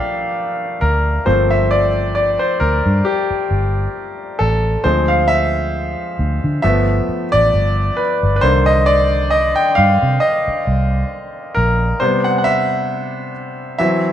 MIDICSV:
0, 0, Header, 1, 4, 480
1, 0, Start_track
1, 0, Tempo, 895522
1, 671, Time_signature, 4, 2, 24, 8
1, 7570, End_track
2, 0, Start_track
2, 0, Title_t, "Grand piano"
2, 0, Program_c, 0, 0
2, 0, Control_c, 0, 64, 127
2, 0, Note_on_c, 0, 53, 49
2, 0, Note_on_c, 0, 57, 44
2, 0, Note_on_c, 0, 58, 52
2, 0, Note_on_c, 0, 74, 88
2, 0, Note_on_c, 0, 76, 86
2, 0, Note_on_c, 0, 77, 97
2, 0, Note_on_c, 0, 79, 70
2, 409, Note_off_c, 0, 77, 0
2, 434, Note_on_c, 0, 70, 76
2, 674, Note_off_c, 0, 53, 0
2, 674, Note_on_c, 0, 53, 49
2, 674, Note_on_c, 0, 72, 73
2, 676, Note_off_c, 0, 57, 0
2, 676, Note_on_c, 0, 57, 43
2, 678, Control_c, 0, 64, 0
2, 679, Note_off_c, 0, 58, 0
2, 679, Note_on_c, 0, 58, 44
2, 680, Note_off_c, 0, 70, 0
2, 680, Note_off_c, 0, 76, 0
2, 680, Note_off_c, 0, 79, 0
2, 680, Note_on_c, 0, 60, 55
2, 681, Note_off_c, 0, 74, 0
2, 787, Control_c, 0, 64, 127
2, 807, Note_on_c, 0, 76, 69
2, 809, Note_off_c, 0, 72, 0
2, 915, Note_on_c, 0, 74, 71
2, 916, Note_off_c, 0, 76, 0
2, 1001, Note_off_c, 0, 53, 0
2, 1003, Note_off_c, 0, 57, 0
2, 1004, Note_off_c, 0, 58, 0
2, 1004, Note_off_c, 0, 60, 0
2, 1144, Note_off_c, 0, 74, 0
2, 1152, Note_on_c, 0, 74, 73
2, 1283, Note_on_c, 0, 72, 70
2, 1288, Note_off_c, 0, 74, 0
2, 1383, Note_off_c, 0, 72, 0
2, 1393, Note_on_c, 0, 70, 72
2, 1615, Note_off_c, 0, 70, 0
2, 1633, Note_on_c, 0, 67, 71
2, 2331, Note_off_c, 0, 67, 0
2, 2352, Note_on_c, 0, 69, 75
2, 2593, Note_on_c, 0, 72, 77
2, 2594, Note_on_c, 0, 53, 46
2, 2596, Note_on_c, 0, 56, 44
2, 2598, Control_c, 0, 64, 0
2, 2599, Note_off_c, 0, 69, 0
2, 2600, Note_on_c, 0, 60, 52
2, 2693, Control_c, 0, 64, 127
2, 2715, Note_off_c, 0, 72, 0
2, 2724, Note_on_c, 0, 77, 75
2, 2829, Note_on_c, 0, 76, 94
2, 2835, Note_off_c, 0, 77, 0
2, 2921, Note_off_c, 0, 53, 0
2, 2923, Note_off_c, 0, 56, 0
2, 2924, Note_off_c, 0, 60, 0
2, 3543, Note_off_c, 0, 76, 0
2, 3551, Note_on_c, 0, 76, 83
2, 3555, Note_on_c, 0, 53, 49
2, 3557, Note_on_c, 0, 57, 44
2, 3559, Control_c, 0, 64, 0
2, 3561, Note_on_c, 0, 59, 52
2, 3648, Control_c, 0, 64, 127
2, 3882, Note_off_c, 0, 53, 0
2, 3883, Note_off_c, 0, 57, 0
2, 3885, Note_off_c, 0, 59, 0
2, 3902, Note_off_c, 0, 76, 0
2, 3923, Note_on_c, 0, 74, 91
2, 4270, Note_on_c, 0, 71, 75
2, 4281, Note_off_c, 0, 74, 0
2, 4474, Note_off_c, 0, 71, 0
2, 4482, Note_on_c, 0, 71, 71
2, 4509, Note_on_c, 0, 72, 90
2, 4510, Note_off_c, 0, 71, 0
2, 4513, Note_on_c, 0, 51, 50
2, 4516, Note_on_c, 0, 58, 44
2, 4519, Control_c, 0, 64, 0
2, 4521, Note_on_c, 0, 50, 54
2, 4617, Control_c, 0, 64, 127
2, 4642, Note_on_c, 0, 75, 79
2, 4647, Note_off_c, 0, 72, 0
2, 4750, Note_on_c, 0, 74, 84
2, 4753, Note_off_c, 0, 75, 0
2, 4987, Note_on_c, 0, 75, 86
2, 4998, Note_off_c, 0, 74, 0
2, 5122, Note_on_c, 0, 79, 82
2, 5126, Note_off_c, 0, 75, 0
2, 5227, Note_on_c, 0, 77, 88
2, 5233, Note_off_c, 0, 79, 0
2, 5468, Note_on_c, 0, 75, 85
2, 5476, Note_off_c, 0, 77, 0
2, 6188, Note_on_c, 0, 70, 80
2, 6211, Note_off_c, 0, 75, 0
2, 6411, Note_off_c, 0, 51, 0
2, 6412, Note_off_c, 0, 58, 0
2, 6414, Note_off_c, 0, 50, 0
2, 6431, Note_on_c, 0, 72, 81
2, 6436, Note_on_c, 0, 48, 49
2, 6437, Note_off_c, 0, 70, 0
2, 6438, Control_c, 0, 64, 0
2, 6439, Note_on_c, 0, 55, 42
2, 6441, Note_on_c, 0, 59, 53
2, 6517, Control_c, 0, 64, 127
2, 6554, Note_off_c, 0, 72, 0
2, 6563, Note_on_c, 0, 78, 78
2, 6629, Note_off_c, 0, 78, 0
2, 6637, Note_on_c, 0, 78, 60
2, 6669, Note_on_c, 0, 76, 86
2, 6671, Note_off_c, 0, 78, 0
2, 7132, Note_off_c, 0, 48, 0
2, 7134, Note_off_c, 0, 55, 0
2, 7135, Note_off_c, 0, 59, 0
2, 7381, Note_off_c, 0, 76, 0
2, 7389, Note_on_c, 0, 76, 82
2, 7394, Note_on_c, 0, 52, 49
2, 7398, Note_on_c, 0, 54, 47
2, 7399, Control_c, 0, 64, 0
2, 7400, Note_on_c, 0, 60, 54
2, 7487, Control_c, 0, 64, 127
2, 7570, Note_off_c, 0, 52, 0
2, 7570, Note_off_c, 0, 54, 0
2, 7570, Note_off_c, 0, 60, 0
2, 7570, Note_off_c, 0, 76, 0
2, 7570, End_track
3, 0, Start_track
3, 0, Title_t, "Fingered electric bass"
3, 0, Program_c, 1, 33
3, 440, Note_on_c, 1, 38, 81
3, 629, Note_off_c, 1, 38, 0
3, 679, Note_on_c, 1, 31, 92
3, 1266, Note_off_c, 1, 31, 0
3, 1399, Note_on_c, 1, 38, 72
3, 1503, Note_off_c, 1, 38, 0
3, 1531, Note_on_c, 1, 43, 78
3, 1614, Note_off_c, 1, 43, 0
3, 1880, Note_on_c, 1, 31, 70
3, 2069, Note_off_c, 1, 31, 0
3, 2362, Note_on_c, 1, 33, 77
3, 2551, Note_off_c, 1, 33, 0
3, 2601, Note_on_c, 1, 38, 98
3, 3187, Note_off_c, 1, 38, 0
3, 3319, Note_on_c, 1, 38, 82
3, 3423, Note_off_c, 1, 38, 0
3, 3453, Note_on_c, 1, 50, 91
3, 3535, Note_off_c, 1, 50, 0
3, 3560, Note_on_c, 1, 31, 82
3, 3749, Note_off_c, 1, 31, 0
3, 3933, Note_on_c, 1, 33, 72
3, 4016, Note_off_c, 1, 33, 0
3, 4040, Note_on_c, 1, 31, 73
3, 4229, Note_off_c, 1, 31, 0
3, 4411, Note_on_c, 1, 31, 77
3, 4495, Note_off_c, 1, 31, 0
3, 4520, Note_on_c, 1, 36, 103
3, 5107, Note_off_c, 1, 36, 0
3, 5241, Note_on_c, 1, 43, 78
3, 5344, Note_off_c, 1, 43, 0
3, 5374, Note_on_c, 1, 48, 87
3, 5456, Note_off_c, 1, 48, 0
3, 5721, Note_on_c, 1, 36, 71
3, 5910, Note_off_c, 1, 36, 0
3, 6201, Note_on_c, 1, 34, 71
3, 6390, Note_off_c, 1, 34, 0
3, 7570, End_track
4, 0, Start_track
4, 0, Title_t, "Muted fingered electric bass strokes"
4, 1771, Note_on_c, 9, 29, 38
4, 1825, Note_off_c, 9, 29, 0
4, 3799, Note_on_c, 9, 29, 36
4, 3853, Note_off_c, 9, 29, 0
4, 5615, Note_on_c, 9, 29, 39
4, 5668, Note_off_c, 9, 29, 0
4, 7570, End_track
0, 0, End_of_file